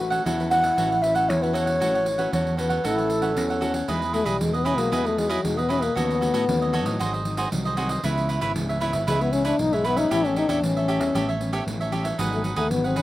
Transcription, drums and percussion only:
0.00 pandeiro
0.12 pandeiro
0.26 pandeiro
0.40 pandeiro
0.51 pandeiro
0.64 pandeiro
0.78 pandeiro
0.92 pandeiro
1.04 pandeiro
1.15 pandeiro
1.30 pandeiro
1.43 pandeiro
1.55 pandeiro
1.67 pandeiro
1.82 pandeiro
1.95 pandeiro
2.06 pandeiro
2.19 pandeiro
2.33 pandeiro
2.47 pandeiro
2.58 pandeiro
2.70 pandeiro
2.85 pandeiro
2.98 pandeiro
3.10 pandeiro
3.22 pandeiro
3.37 pandeiro
3.50 pandeiro
3.62 pandeiro
3.74 pandeiro
3.88 pandeiro
4.02 pandeiro
4.14 pandeiro
4.26 pandeiro
4.41 pandeiro
4.54 pandeiro
4.66 pandeiro
4.78 pandeiro
4.92 pandeiro
5.06 pandeiro
5.18 pandeiro
5.30 pandeiro
5.45 pandeiro
5.59 pandeiro
5.70 pandeiro
5.82 pandeiro
5.97 pandeiro
6.11 pandeiro
6.22 pandeiro
6.34 pandeiro
6.49 pandeiro
6.62 pandeiro
6.73 pandeiro
6.86 pandeiro
7.01 pandeiro
7.14 pandeiro
7.25 pandeiro
7.37 pandeiro
7.52 pandeiro
7.65 pandeiro
7.77 pandeiro
7.89 pandeiro
8.04 pandeiro
8.18 pandeiro
8.29 pandeiro
8.41 pandeiro
8.56 pandeiro
8.70 pandeiro
8.81 pandeiro
8.93 pandeiro
9.08 pandeiro
9.21 pandeiro
9.33 pandeiro
9.45 pandeiro
9.59 pandeiro
9.73 pandeiro
9.85 pandeiro
9.97 pandeiro
10.11 pandeiro
10.25 pandeiro
10.36 pandeiro
10.49 pandeiro
10.63 pandeiro
10.77 pandeiro
10.88 pandeiro
11.01 pandeiro
11.15 pandeiro
11.29 pandeiro
11.41 pandeiro
11.53 pandeiro
11.68 pandeiro
11.81 pandeiro
11.92 pandeiro
12.05 pandeiro
12.19 pandeiro
12.33 pandeiro
12.44 pandeiro
12.56 pandeiro
12.71 pandeiro
12.84 pandeiro
12.96 pandeiro

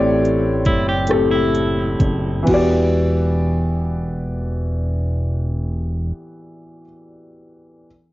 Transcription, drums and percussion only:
0.25 closed hi-hat
0.65 kick, closed hi-hat
1.07 cross-stick, closed hi-hat
1.55 closed hi-hat
2.00 kick, closed hi-hat
2.47 kick, crash

